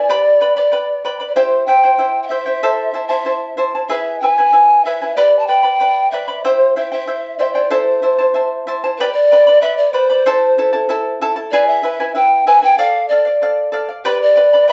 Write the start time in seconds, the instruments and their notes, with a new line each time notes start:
Already playing: pan flute D5
0.09 charango G4 B4 D5 G5 B5
0.41 charango B4 D5 G5 B5
0.55 charango B4 D5 B5, pan flute D5
0.72 charango B4 D5 G5 B5
1.05 charango B4 D5 G5 B5
1.20 charango B4 D5 B5
1.28 pan flute D5
1.35 charango E4 G4 C5 E5 G5, pan flute C5
1.66 charango E4 C5 E5 G5, pan flute G5
1.84 charango E4 C5 G5
1.98 charango E4 C5 E5 G5
2.22 pan flute G5
2.27 pan flute E5, charango E5
2.31 charango E4 C5 G5
2.46 charango E4 C5 G5
2.63 charango E4 A4 C5 E5 A5
2.94 charango E4 C5 E5 A5
3.08 charango E4 C5 A5, pan flute E5
3.25 charango E4 C5 E5 A5
3.57 charango E4 C5 E5 A5
3.75 charango E4 C5 A5
3.89 charango E4 G#4 B4 E5 G#5, pan flute E5
4.19 charango E4 E5, pan flute G#5
4.24 charango B4 G#5
4.38 charango E4 B4 G#5
4.52 charango E4 B4 E5 G#5
4.84 charango E4 B4 E5 G#5, pan flute E5
5.02 charango E4 B4 G#5
5.16 charango G4 B4 D5 G5 B5, pan flute D5
5.39 pan flute A5
5.46 charango B4 D5 G5 B5, pan flute G5
5.63 charango B4 D5 B5
5.80 charango B4 D5 G5 B5
6.11 charango B4 D5 G5 B5, pan flute E5
6.28 charango B4 D5 B5
6.44 charango E4 G4 C5 E5 G5, pan flute C5
6.76 charango E4 C5 E5 G5, pan flute E5
6.92 charango E4 C5 G5, pan flute E5
7.07 charango E4 C5 E5 G5
7.38 charango E4 C5 E5 G5, pan flute D5
7.44 pan flute E5
7.52 charango C5 G5, pan flute D5
7.57 charango E4
7.70 charango E4 A4 C5 E5 A5, pan flute C5
8.02 charango E4 C5 E5 A5
8.19 charango E4 C5 A5
8.34 charango E4 C5 E5 A5
8.67 charango E4 C5 E5 A5
8.84 charango E4 C5 A5
8.98 charango G4 B4 D5 G5 B5, pan flute B4
9.12 pan flute D5
9.32 charango B4 D5 G5 B5
9.47 charango B4 D5 B5
9.61 charango B4 D5 G5 B5, pan flute E5
9.77 pan flute D5
9.93 charango B4 D5 G5 B5, pan flute C5
10.10 charango B4 D5 B5
10.26 charango E4 A4 C5 E5 A5
10.58 charango E4 A4 E5 A5
10.73 charango E4 A4 A5
10.89 charango E4 A4 E5 A5
11.21 charango E4 A4 E5 A5
11.36 charango E4 A4 A5
11.51 charango E4 G#4 B4 E5 G#5, pan flute D5
11.67 pan flute E5
11.83 charango E4 B4 E5 G#5
12.00 charango E4 B4 G#5
12.15 charango E4 B4 E5, pan flute G5
12.47 charango E4 B4 E5 G#5, pan flute G#5
12.62 charango E4 B4 G#5, pan flute G5
12.78 charango A4 D5 F5, pan flute F5
13.08 charango A4 D5, pan flute D5
13.12 charango F5
13.25 charango D5 F5
13.42 charango A4 D5 F5
13.72 charango A4 D5 F5
13.89 charango D5 F5
14.05 charango G4 B4 D5 G5 B5, pan flute B4
14.22 pan flute D5
14.36 charango B4 D5 G5 B5
14.53 charango B4 D5 B5
14.68 charango B4 G5, pan flute E5